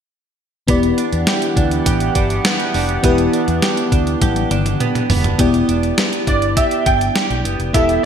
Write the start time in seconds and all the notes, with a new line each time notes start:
0.67 E1 E3 B3 D4 E4 G4 D5 F#5, kick, closed hi-hat
0.83 closed hi-hat
0.98 D4, closed hi-hat
1.13 E2, closed hi-hat
1.27 G4, snare, closed hi-hat
1.42 closed hi-hat
1.57 D2 D4, kick, closed hi-hat
1.71 closed hi-hat
1.86 A1 G4, kick, closed hi-hat
2.00 closed hi-hat
2.15 G1 D4, kick, closed hi-hat
2.30 closed hi-hat
2.45 B3, snare, closed hi-hat
2.60 closed hi-hat
2.74 F1 D4, open hi-hat
2.89 closed hi-hat
3.03 E1 B3 E4 G4 B4, kick, closed hi-hat
3.18 closed hi-hat
3.33 D4, closed hi-hat
3.48 E2, closed hi-hat
3.62 G4, snare, closed hi-hat
3.77 closed hi-hat
3.92 D2 D4, kick, closed hi-hat
4.07 closed hi-hat
4.21 A1 G4, kick, closed hi-hat, high tom
4.36 closed hi-hat, high tom
4.51 G1 D4, closed hi-hat, mid tom
4.66 closed hi-hat, mid tom
4.80 B3, closed hi-hat, mid tom
4.95 closed hi-hat, mid tom
5.10 E1 B3 D4, floor tom, open hi-hat
5.24 closed hi-hat, floor tom
5.38 E1 B3 E4 G4 D5, kick, closed hi-hat
5.54 closed hi-hat
5.68 E1 D4, closed hi-hat
5.83 closed hi-hat
5.98 B3, snare, closed hi-hat
6.13 closed hi-hat
6.27 G1 D4 D5, kick, closed hi-hat
6.42 closed hi-hat
6.57 G4 E5, kick, closed hi-hat
6.71 closed hi-hat
6.86 G1 D4 G5, kick, closed hi-hat
7.01 closed hi-hat
7.15 G4, snare, closed hi-hat
7.30 B1, closed hi-hat
7.45 F#1 B3, closed hi-hat
7.60 F1, closed hi-hat
7.73 E1 B3 E4 G4 A4 E5, kick, closed hi-hat
7.89 closed hi-hat